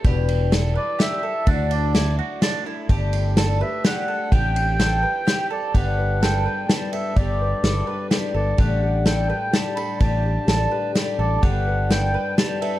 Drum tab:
RD |xxx-x-|xxx-x-|xxx-x-|xxx-x-|
SD |--o-o-|--o-o-|--o-o-|--o-o-|
BD |o-----|o-----|o-----|o-----|

RD |x-x-xx|x-x-x-|x-x-xx|x-x-x-|
SD |--o-o-|--o-o-|--o-o-|--o-o-|
BD |o-----|o-----|o-----|o-----|

RD |x-x-xx|
SD |--o-o-|
BD |o-----|